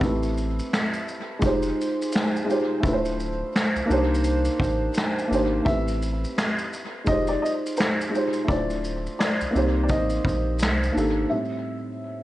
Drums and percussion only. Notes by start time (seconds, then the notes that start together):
0.01 kick, closed hi-hat, shaker
0.23 shaker
0.37 shaker
0.59 shaker
0.73 finger snap, snare, closed hi-hat, shaker
0.94 shaker
1.08 shaker
1.42 kick, closed hi-hat, shaker
1.62 shaker
1.81 shaker
2.02 shaker
2.12 finger snap, snare, closed hi-hat, shaker
2.36 shaker
2.50 shaker
2.83 kick, closed hi-hat, shaker
3.05 shaker
3.20 shaker
3.56 finger snap, snare, closed hi-hat, shaker
3.76 shaker
3.91 shaker
4.15 shaker
4.24 closed hi-hat, shaker
4.45 shaker
4.60 kick, shaker
4.94 finger snap, snare, closed hi-hat, shaker
5.19 shaker
5.33 shaker
5.66 kick, closed hi-hat, shaker
5.88 shaker
6.02 shaker
6.24 shaker
6.38 finger snap, snare, closed hi-hat, shaker
6.58 shaker
6.73 shaker
7.06 kick, closed hi-hat, shaker
7.27 shaker
7.46 shaker
7.66 shaker
7.77 finger snap, snare, closed hi-hat, shaker
8.01 shaker
8.15 shaker
8.33 shaker
8.48 kick, closed hi-hat, shaker
8.70 shaker
8.84 shaker
9.06 shaker
9.20 finger snap, snare, closed hi-hat, shaker
9.41 shaker
9.56 shaker
9.89 kick, closed hi-hat, shaker
10.10 shaker
10.25 kick, shaker
10.59 finger snap, snare, closed hi-hat, shaker
10.83 shaker
10.97 shaker